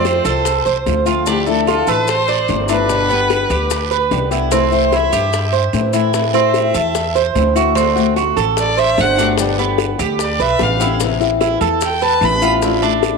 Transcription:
Already playing: upright bass F2, nylon-string guitar F3 A3 C4 F4, cuban tres C4
0.05 violin C5, high bongo, short guiro, maracas
0.25 upright bass C2, cuban tres A4, high bongo, short guiro, maracas
0.45 muted nylon-string guitar stroke, high bongo, long guiro, maracas
0.65 upright bass C2, cuban tres C5, high bongo, maracas
0.86 upright bass D2, nylon-string guitar F3 A3 C4 F4, high bongo, low bongo, short guiro, maracas
1.06 nylon-string guitar F3 A3 C4 F4, cuban tres F4, short guiro, maracas
1.26 nylon-string guitar D3 F3 A3 D4 E4, cuban tres D4, violin G4, high bongo, long guiro, maracas
1.47 nylon-string guitar F3 A3 D4 E4, violin A4, high bongo, maracas
1.67 cuban tres F4, violin A4, high bongo, short guiro, maracas
1.87 upright bass A1, cuban tres A4, violin B4, high bongo, short guiro, maracas
2.07 violin C5, muted nylon-string guitar stroke, high bongo, long guiro, maracas
2.28 cuban tres D5, high bongo, maracas
2.48 upright bass G1, nylon-string guitar F3 A3 D4 E4, high bongo, low bongo, short guiro, maracas
2.68 nylon-string guitar F3 A3 D4 E4, cuban tres D4, violin B4, short guiro, maracas
2.89 nylon-string guitar B2 D3 G3 B3 G4, high bongo, long guiro, maracas
3.09 nylon-string guitar D3 G3 B3 G4, cuban tres B3, high bongo, maracas
3.30 high bongo, short guiro, maracas
3.50 upright bass D2, cuban tres G4, high bongo, short guiro, maracas
3.70 muted nylon-string guitar stroke, high bongo, long guiro, maracas
3.91 cuban tres B4, high bongo, maracas
4.11 upright bass C2, nylon-string guitar D3 G3 B3 G4, high bongo, low bongo, short guiro, maracas
4.31 nylon-string guitar D3 G3 B3 G4, cuban tres E4, short guiro, maracas
4.51 nylon-string guitar C3 E3 A3 C4 E4, cuban tres C4, high bongo, long guiro, maracas
4.71 nylon-string guitar E3 A3 C4 E4, violin C5, high bongo, maracas
4.92 cuban tres E4, violin E5, high bongo, short guiro, maracas
5.13 upright bass G2, cuban tres G4, high bongo, short guiro, maracas
5.32 muted nylon-string guitar stroke, high bongo, long guiro, maracas
5.53 cuban tres C5, high bongo, maracas
5.73 upright bass A2, nylon-string guitar E3 A3 C4 E4, high bongo, low bongo, short guiro, maracas
5.93 nylon-string guitar E3 A3 C4 E4, cuban tres E4, short guiro, maracas
6.13 nylon-string guitar E3 A3 C4 E4, high bongo, long guiro, maracas
6.34 nylon-string guitar A3 C4 E4, cuban tres C4, violin C5, high bongo, maracas
6.54 violin E5, high bongo, short guiro, maracas
6.74 upright bass E2, cuban tres A4, high bongo, short guiro, maracas
6.95 muted nylon-string guitar stroke, high bongo, long guiro, maracas
7.15 cuban tres C5, high bongo, maracas
7.35 upright bass D2, nylon-string guitar E3 A3 C4 E4, high bongo, low bongo, short guiro, maracas
7.55 nylon-string guitar A3 C4 E4, cuban tres F#4, short guiro, maracas
7.75 nylon-string guitar D3 A3 C4 F#4, cuban tres C4, high bongo, long guiro, maracas
7.96 nylon-string guitar A3 C4 F#4, high bongo, maracas
8.16 cuban tres F#4, high bongo, short guiro, maracas
8.37 upright bass A1, cuban tres A4, high bongo, short guiro, maracas
8.57 violin D5, muted nylon-string guitar stroke, high bongo, long guiro, maracas
8.77 cuban tres C5, violin E5, high bongo, maracas
8.98 upright bass G1, nylon-string guitar D3 A3 C4 F#4, violin F#5, high bongo, low bongo, short guiro, maracas
9.18 nylon-string guitar A3 C4 F#4, cuban tres D4, short guiro, maracas
9.38 nylon-string guitar B2 D3 G3 B3 G4, high bongo, long guiro, maracas
9.58 nylon-string guitar D3 G3 B3 G4, cuban tres B3, high bongo, maracas
9.78 high bongo, short guiro, maracas
9.98 upright bass D2, cuban tres G4, high bongo, short guiro, maracas
10.19 violin D5, muted nylon-string guitar stroke, high bongo, long guiro, maracas
10.39 upright bass B1, cuban tres B4, violin E5, high bongo, maracas
10.59 upright bass A1, nylon-string guitar D3 G3 B3 G4, high bongo, short guiro, maracas
10.63 violin F5
10.80 nylon-string guitar D3 G3 B3 G4, cuban tres E4, low bongo, short guiro, maracas
11.00 nylon-string guitar C3 E3 B3 C4 E4, high bongo, long guiro, maracas
11.20 nylon-string guitar E3 B3 C4 E4, high bongo, maracas
11.41 cuban tres E4, high bongo, short guiro, maracas
11.61 upright bass E2, cuban tres A4, high bongo, short guiro, maracas
11.81 violin G5, muted nylon-string guitar stroke, high bongo, long guiro, maracas
12.02 cuban tres B4, violin A5, high bongo, maracas
12.21 upright bass A1, nylon-string guitar E3 B3 C4 E4, high bongo, low bongo, short guiro, maracas
12.25 violin B5
12.42 nylon-string guitar E3 B3 C4 E4, cuban tres F4, short guiro, maracas
12.62 nylon-string guitar F3 A3 D4 E4, high bongo, long guiro, maracas
12.82 nylon-string guitar A3 D4 E4, cuban tres D4, high bongo, maracas
13.03 high bongo, short guiro, maracas

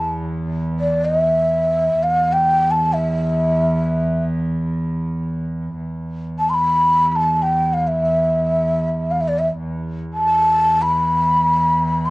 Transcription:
Already playing: cello E2, ney A5
0.80 ney D5
1.05 ney D#5
1.19 ney E5
1.96 cello E2
2.03 ney F5
2.33 ney G5
2.71 ney A5
2.93 ney E5
5.76 cello E2
6.39 ney A5
6.50 ney C6
6.54 ney B5
7.12 ney B5
7.16 ney A5
7.42 ney G5
7.73 ney F5
7.87 ney E5
9.11 ney F5
9.21 ney E5
9.28 ney D5
9.39 ney E5
9.57 cello E2
10.14 ney A5
10.82 ney B5
12.05 ney C6

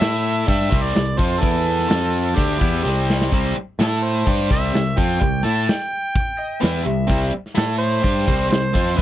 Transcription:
Already playing: harmonica E5
0.00 picked electric bass A2, overdriven electric guitar A3 E4 A4, snare, closed hi-hat
0.46 picked electric bass G2, overdriven electric guitar G3 D4 G4, harmonica E5, kick, closed hi-hat
0.61 snare
0.70 picked electric bass C2, overdriven electric guitar C3 G3 C4, kick
0.82 harmonica D5
0.94 picked electric bass C2, overdriven electric guitar C3 G3, snare, closed hi-hat
1.17 picked electric bass F2, overdriven electric guitar F3 C4 F4, harmonica C5, kick
1.40 picked electric bass E2, overdriven electric guitar E3 B3 E4, harmonica A4, kick, closed hi-hat
1.79 snare
1.88 picked electric bass F2, overdriven electric guitar F3 C4 F4, snare, closed hi-hat
2.35 picked electric bass D2, overdriven electric guitar D3 A3 D4, harmonica G4, kick, closed hi-hat
2.59 picked electric bass E2, overdriven electric guitar E3 B3 E4, kick
2.83 picked electric bass C2, overdriven electric guitar C3 G3 C4, snare
3.10 snare
3.21 snare
3.32 picked electric bass C2, overdriven electric guitar C3 G3 C4, kick, closed hi-hat
3.56 muted picked electric bass stroke, muted overdriven electric guitar stroke
3.79 picked electric bass A2, overdriven electric guitar A3 E4 A4, harmonica A4, snare, closed hi-hat
4.03 harmonica C5
4.27 picked electric bass G2, overdriven electric guitar G3 D4 G4, kick, closed hi-hat
4.40 snare
4.51 picked electric bass C2, overdriven electric guitar C3 G3 C4, harmonica E5, kick
4.74 picked electric bass C2, overdriven electric guitar C3 G3, snare, closed hi-hat
4.97 picked electric bass F2, overdriven electric guitar F3 C4 F4, harmonica G5, kick
5.21 picked electric bass C2, overdriven electric guitar C3 G3, kick, closed hi-hat
5.43 picked electric bass A2, overdriven electric guitar A3 E4 A4, harmonica A5
5.68 harmonica G5, snare, closed hi-hat
6.15 kick, closed hi-hat
6.39 electric slide guitar D#5
6.60 picked electric bass E2, overdriven electric guitar E3 B3 E4, electric slide guitar G5, snare, closed hi-hat
6.84 picked electric bass C2, overdriven electric guitar C3 G3, electric slide guitar E5
7.07 picked electric bass C2, overdriven electric guitar C3 G3 C4, kick, closed hi-hat
7.31 muted overdriven electric guitar stroke, muted picked electric bass stroke
7.46 snare
7.55 picked electric bass A2, overdriven electric guitar A3 E4 A4, harmonica A4, snare, closed hi-hat
7.78 harmonica C5
8.03 picked electric bass G2, overdriven electric guitar G3 D4 G4, kick, closed hi-hat
8.26 picked electric bass C2, overdriven electric guitar C3 G3 C4, kick
8.50 picked electric bass C2, overdriven electric guitar C3 G3, harmonica C5, snare, closed hi-hat
8.73 picked electric bass F2, overdriven electric guitar F3 C4 F4, kick
8.96 picked electric bass E2, overdriven electric guitar E3 B3 E4, harmonica B4, kick, closed hi-hat

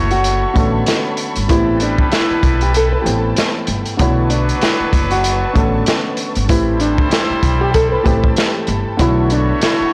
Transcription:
Already playing: upright bass F#1, upright piano D3 A3 B3 F#4 C#5, trumpet section A3 F#4 C#5, string section A4 C#5 B5 C#6
0.11 nylon-string guitar F#4, closed hi-hat
0.24 closed hi-hat
0.53 upright bass A1, upright piano D3 A3 B3 C#4 A4, kick, closed hi-hat
0.86 snare, closed hi-hat
1.17 closed hi-hat
1.36 upright bass G1, closed hi-hat
1.48 upright bass A1, upright piano E3 A3 B3 C4 G4, trumpet section G3 E4 B4, nylon-string guitar E4, string section G5 A5, kick, closed hi-hat
1.80 nylon-string guitar D4, closed hi-hat
1.98 kick
2.12 nylon-string guitar E4, snare, closed hi-hat
2.30 muted upright bass stroke
2.43 upright bass B1, kick, closed hi-hat
2.61 nylon-string guitar G4, closed hi-hat
2.74 nylon-string guitar A4, closed hi-hat
2.92 nylon-string guitar B4
3.02 upright bass A1, upright piano E3 A3 B3, nylon-string guitar G4
3.06 upright piano C4 G4, closed hi-hat
3.36 snare, closed hi-hat
3.67 upright bass G1, closed hi-hat
3.86 closed hi-hat
3.97 upright bass B1, upright piano D3 A3 B3 F#4 C#5, trumpet section F#3 D4 B4, string section B4 A5 C#6, kick, closed hi-hat
4.01 nylon-string guitar E4
4.30 nylon-string guitar D4, closed hi-hat
4.49 closed hi-hat
4.61 nylon-string guitar E4, snare, closed hi-hat
4.80 muted upright bass stroke
4.93 upright bass F#1, kick, closed hi-hat
5.11 nylon-string guitar F#4, closed hi-hat
5.24 closed hi-hat
5.53 upright bass A1, upright piano D3 A3 B3 C#4 A4, kick, closed hi-hat
5.86 snare, closed hi-hat
6.17 closed hi-hat
6.35 upright bass G1, closed hi-hat
6.48 upright bass A1, upright piano E3 A3 C4 G4 B4, trumpet section G3 E4 C5, nylon-string guitar E4, string section A4 G5 A5 B5, kick, closed hi-hat
6.80 nylon-string guitar D4, closed hi-hat
6.98 kick
7.11 nylon-string guitar E4, snare, closed hi-hat
7.30 muted upright bass stroke
7.43 upright bass B1, kick, closed hi-hat
7.61 nylon-string guitar G4
7.74 nylon-string guitar A4, kick, closed hi-hat
7.92 nylon-string guitar B4
8.03 upright bass A1, upright piano E3 A3 C4 G4 B4, nylon-string guitar G4, kick, closed hi-hat
8.24 kick
8.36 snare, closed hi-hat
8.67 upright bass G1, closed hi-hat
8.97 upright bass B1, upright piano D3 A3 B3 C#5, trumpet section A3 F#4 C#5, nylon-string guitar E4, string section C#5 B5 C#6, kick, closed hi-hat
9.01 upright piano F#4
9.30 nylon-string guitar D4, closed hi-hat
9.61 nylon-string guitar E4, snare, closed hi-hat
9.80 muted upright bass stroke

